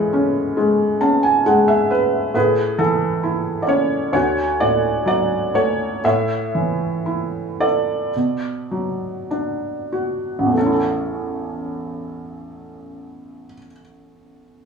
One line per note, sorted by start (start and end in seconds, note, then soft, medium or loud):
0.00 2.31 A2 medium
0.00 0.99 E3 medium
0.00 0.55 G#3 medium
0.00 1.43 E4 medium
0.00 1.42 C#5 medium
0.13 1.00 C#4 medium
0.57 1.45 G#3 medium
1.01 2.30 C#4 soft
1.01 1.22 A5 medium
1.23 1.44 G#5 medium
1.46 2.32 G#3 medium
1.46 1.67 F#5 medium
1.68 1.89 E5 medium
1.91 2.32 B4 medium
2.34 4.10 A2 medium
2.34 4.11 G#4 soft
2.34 2.81 B4 medium
2.78 4.10 E3 soft
2.78 3.64 A4 medium
3.23 4.11 E4 soft
3.62 3.69 D5 soft
3.67 4.12 C#4 soft
3.67 4.11 C#5 medium
4.13 5.99 D2 medium
4.13 6.00 F#4 medium
4.13 4.61 C#5 medium
4.60 6.00 A2 soft
4.60 5.06 D5 medium
5.06 6.00 F#3 soft
5.06 5.52 D5 medium
5.54 6.02 A3 soft
5.54 6.05 C#5 medium
6.04 8.10 A2 medium
6.04 8.11 C#5 soft
6.04 7.64 E5 medium
6.55 8.10 E3 soft
7.06 8.11 E4 soft
7.60 8.13 A4 soft
7.60 9.27 D5 medium
8.16 10.53 B2 soft
8.71 10.52 F#3 soft
9.31 10.53 D4 soft
9.92 10.55 F#4 soft
10.39 13.45 A1 soft
10.46 13.52 E2 soft
10.52 13.58 A3 soft
10.57 13.65 C#4 soft
10.57 10.72 A4 medium
10.66 13.72 E4 soft
10.73 13.79 A4 soft